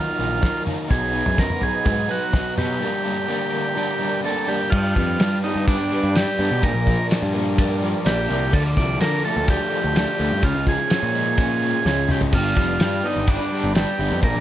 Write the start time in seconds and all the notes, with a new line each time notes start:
Already playing: D#3 F#3 A#3 D#4 F4 A#4 F5 A#5 D#6
0.19 A#1 F#3 A#3 D#4
0.43 D#3 F#3 A#3 D#4, kick, snare, floor tom
0.67 F#3 A#3 D#4, mid tom
0.90 B1 B2 F#3 B3 D#4 G#4 B4 D#5, kick, floor tom
1.13 F#3 B3 D#4
1.26 F#2, floor tom
1.37 B2 F#3 B3 D#4 A#4, kick, snare
1.50 mid tom
1.61 G#4, floor tom
1.85 G#2 B2 F#3 B3 D#4, kick, floor tom
2.09 F#3 B3 D#4 F#4
2.33 B2 F#3 B3 D#4, kick, snare, floor tom
2.57 B2 F#3 B3 D#4 G4, mid tom
2.81 G2 D3 G3 A#3 D4 A#4 D5 G5 D6
3.05 G3 A#3 D4
3.28 D3 G3 A#3 D4
3.75 G2 D3 G3 A#3 D4
4.00 G3 A#3 D4
4.23 D3 G3 A#3 D4 A4
4.48 G3 A#3 D4 G4
4.70 G2 F4 B4 D5 G5 D6, kick, crash
4.96 F2 G3, kick
5.19 G3 D4, snare, ride bell
5.33 snare
5.44 B3 D#4
5.56 G2
5.68 D4, kick, ride bell
5.92 G3
6.03 G2
6.15 D4 G4, snare, ride bell
6.39 G2 B3
6.51 B2
6.63 A#1 A#2 A#4 F5, kick, ride bell
6.74 A#1
6.87 F3, kick
7.10 D4, snare, ride bell
7.22 G2, snare
7.34 A#3
7.58 D4, kick, ride bell
7.82 F3
8.06 A#1 D4 G4, snare, ride bell
8.30 C2 A#3
8.53 D2 D3 A4, kick, crash
8.77 C2 F3 D5, kick
9.00 D3 D4 A#4, snare, ride bell
9.14 snare
9.25 A3 A4
9.37 D2
9.48 D4 G4, kick, ride bell
9.72 F3
9.84 D2
9.96 D4 G4, snare, ride bell
10.19 D2 A3
10.31 G2
10.43 C#2 C#3 F4 G#4 C#5 C#6, kick, ride bell
10.55 C#2
10.67 F3 G#4, kick
10.90 C#4, snare, ride bell
11.03 A#2
11.15 G#3
11.38 C#4, kick, ride bell
11.62 F3
11.86 C#2 C#4 G#4, snare
12.09 C#3 G#3 G4, mid tom
12.21 floor tom
12.32 G1 G2 F4 B4 D5 G5 D6, kick, crash
12.56 F1 G3, kick
12.80 G2 D4, snare, ride bell
12.93 snare
13.04 B3 D#4
13.16 G1
13.27 D4, kick, ride bell
13.52 G3
13.64 G1
13.75 D4 G4, snare, ride bell
13.99 G1 B3
14.12 F2
14.22 A#1 A#2 A#4 D5 F5, kick, ride bell
14.35 A#1